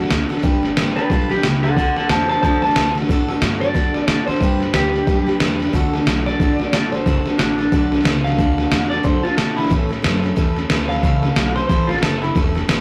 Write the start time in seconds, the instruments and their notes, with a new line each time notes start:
Already playing: steel-string acoustic guitar F#4
0.04 snare
0.10 upright bass D2, steel-string acoustic guitar A3 D4 F#4 A4, snare, hi-hat pedal
0.29 steel-string acoustic guitar D4 F#4 A4, muted upright bass stroke, snare
0.37 snare
0.43 upright bass G1, steel-string acoustic guitar G3 D4 G4 B4, kick, snare
0.63 steel-string acoustic guitar D4 G4 B4, snare
0.77 upright bass A1, steel-string acoustic guitar G3 D4 G4 B4, snare, hi-hat pedal
0.96 clean electric guitar D4 B4, steel-string acoustic guitar G4 B4, muted upright bass stroke, snare
1.00 steel-string acoustic guitar D4
1.10 upright bass B1, steel-string acoustic guitar G3 D4 G4 B4, clean electric guitar F4 A4, kick, snare
1.30 steel-string acoustic guitar D4 G4 B4, clean electric guitar G4, snare
1.36 snare
1.43 upright bass C#2, steel-string acoustic guitar G3 D4 G4 B4, snare, hi-hat pedal
1.63 steel-string acoustic guitar D4 G4 B4, clean electric guitar A4 F#5, snare
1.76 upright bass D2, steel-string acoustic guitar D3 A3 D4 F#4 A4, clean electric guitar A4 F#5, kick, snare
1.96 steel-string acoustic guitar F#4 A4, clean electric guitar A4 F#5, muted upright bass stroke, snare
2.00 steel-string acoustic guitar D4
2.09 upright bass E2, steel-string acoustic guitar A3 D4 F#4, clean electric guitar C5 A5, snare, hi-hat pedal
2.14 steel-string acoustic guitar A4
2.29 steel-string acoustic guitar F#4 A4, clean electric guitar C5 A5, snare
2.33 steel-string acoustic guitar D4
2.42 upright bass F#2, steel-string acoustic guitar D3 A3 D4 F#4, clean electric guitar C5 A5, kick, snare
2.46 steel-string acoustic guitar A4
2.62 steel-string acoustic guitar D4 F#4 A4, clean electric guitar A5, snare
2.69 snare
2.75 upright bass D2, steel-string acoustic guitar A3 D4 F#4 A4, snare, hi-hat pedal
2.95 steel-string acoustic guitar D4 F#4 A4, snare
3.02 snare
3.09 upright bass A2, steel-string acoustic guitar D3 A3 D4 F#4 A4, kick, snare
3.28 steel-string acoustic guitar D4 F#4 A4, snare
3.41 upright bass G2, steel-string acoustic guitar A3 D4 F#4 A4, snare, hi-hat pedal
3.61 steel-string acoustic guitar D4 F#4 A4, clean electric guitar D5, snare
3.74 upright bass F#2, steel-string acoustic guitar D3 A3 D4 F#4 A4, kick, snare
3.94 steel-string acoustic guitar D4 F#4 A4, muted upright bass stroke, snare
4.07 upright bass A2, steel-string acoustic guitar A3 D4 F#4 A4, clean electric guitar D5, snare, hi-hat pedal
4.27 steel-string acoustic guitar F#4 A4, clean electric guitar C5, muted upright bass stroke, snare
4.31 steel-string acoustic guitar D4, snare
4.40 upright bass G2, steel-string acoustic guitar G3 D4 G4 B4, kick, snare
4.60 steel-string acoustic guitar D4 G4 B4, snare
4.73 upright bass D2, steel-string acoustic guitar G3 D4 G4 B4, clean electric guitar G4, snare, hi-hat pedal
4.94 steel-string acoustic guitar D4 G4 B4, snare
5.07 upright bass F#2, steel-string acoustic guitar G3 D4 G4 B4, kick, snare
5.26 steel-string acoustic guitar D4 G4 B4, snare
5.40 upright bass E2, steel-string acoustic guitar G3 D4 G4 B4, snare, hi-hat pedal
5.59 steel-string acoustic guitar D4 G4 B4, snare
5.67 snare
5.73 upright bass D2, steel-string acoustic guitar D3 A3 D4 F#4 A4, kick, snare
5.93 steel-string acoustic guitar D4 F#4 A4, snare
6.06 upright bass B1, steel-string acoustic guitar F#4, snare, hi-hat pedal
6.10 steel-string acoustic guitar A4
6.26 steel-string acoustic guitar D4 F#4 A4, clean electric guitar D5, snare
6.40 upright bass A1, steel-string acoustic guitar D3 A3 D4 F#4 A4, kick, snare
6.58 steel-string acoustic guitar D4 F#4 A4, muted upright bass stroke, snare
6.72 upright bass G1, steel-string acoustic guitar A3 D4 F#4 A4, clean electric guitar D5, snare, hi-hat pedal
6.92 steel-string acoustic guitar D4 F#4 A4, clean electric guitar C5, snare
7.06 upright bass F#1, steel-string acoustic guitar D3 A3 D4 F#4 A4, kick, snare
7.25 steel-string acoustic guitar D4 F#4 A4, muted upright bass stroke, snare
7.38 upright bass A1, steel-string acoustic guitar A3 D4 F#4 A4, clean electric guitar D4, snare, hi-hat pedal
7.58 steel-string acoustic guitar D4 F#4 A4, snare
7.72 upright bass B1, steel-string acoustic guitar D3 A3 D4 F#4 A4, kick, snare
7.92 steel-string acoustic guitar D4 F#4 A4, snare
7.99 snare
8.04 upright bass C#2, steel-string acoustic guitar A3 D4 F#4 A4, snare, hi-hat pedal
8.24 steel-string acoustic guitar D4 F#4 A4, clean electric guitar F5, snare
8.32 snare
8.38 upright bass D2, steel-string acoustic guitar D3 A3 D4 F#4 A4, kick, snare
8.58 steel-string acoustic guitar D4 F#4 A4, snare
8.71 upright bass E2, steel-string acoustic guitar A3 D4 F#4 A4, snare, hi-hat pedal
8.90 steel-string acoustic guitar D4 F#4 A4, clean electric guitar D5, snare
9.03 upright bass F#2, steel-string acoustic guitar D3 A3 D4 F#4 A4, clean electric guitar C5, kick, snare
9.23 steel-string acoustic guitar D4 F#4 A4, clean electric guitar F4, muted upright bass stroke, snare
9.37 upright bass B2, steel-string acoustic guitar A3 D4 F#4 A4, clean electric guitar A4, snare, hi-hat pedal
9.56 steel-string acoustic guitar D4 F#4 A4, clean electric guitar E4, snare
9.65 snare
9.70 steel-string acoustic guitar A2 E3 A3 C#4 E4 A4, upright bass A2, kick, snare
9.89 steel-string acoustic guitar A3 C#4 E4 A4, snare
10.02 upright bass F#2, steel-string acoustic guitar A3 C#4 E4 A4, snare, hi-hat pedal
10.23 steel-string acoustic guitar A3 C#4 E4 A4, snare
10.36 upright bass E2, steel-string acoustic guitar A2 E3 A3 C#4 E4 A4, kick, snare
10.56 steel-string acoustic guitar A3 C#4 E4 A4, snare
10.70 upright bass D2, steel-string acoustic guitar A3 C#4 E4 A4, snare, hi-hat pedal
10.89 steel-string acoustic guitar A3 C#4 E4 A4, clean electric guitar F5, snare
10.96 snare
11.03 upright bass C#2, steel-string acoustic guitar A2 E3 A3 C#4 E4 A4, kick, snare
11.22 steel-string acoustic guitar A3 C#4 E4 A4, snare
11.35 upright bass B1, steel-string acoustic guitar A3 C#4 E4 A4, snare, hi-hat pedal
11.56 steel-string acoustic guitar A3 C#4 E4 A4, clean electric guitar C5, snare
11.68 upright bass A1, steel-string acoustic guitar A2 E3 A3 C#4 E4 A4, clean electric guitar C5, kick, snare
11.87 steel-string acoustic guitar E4 A4, clean electric guitar F4, snare
11.92 steel-string acoustic guitar A3 C#4
11.96 snare
12.02 upright bass F#1, steel-string acoustic guitar A3 C#4 E4, clean electric guitar A4, snare, hi-hat pedal
12.06 steel-string acoustic guitar A4
12.22 steel-string acoustic guitar A3 C#4 E4 A4, clean electric guitar E4, snare
12.35 upright bass E1, steel-string acoustic guitar A2 E3 A3 C#4 E4 A4, kick, snare
12.55 steel-string acoustic guitar A3 C#4 E4 A4, snare
12.68 upright bass G1, steel-string acoustic guitar A3 C#4 E4 A4, snare, hi-hat pedal